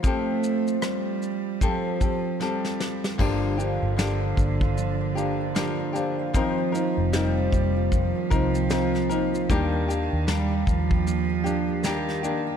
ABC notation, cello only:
X:1
M:4/4
L:1/8
Q:"Swing 16ths" 1/4=76
K:Fmix
V:1 name="Cello" clef=bass
A,2 G,2 F,2 G,2 | D,8 | F,2 G,2 F,4 | E,2 G, F,3 E,2 |]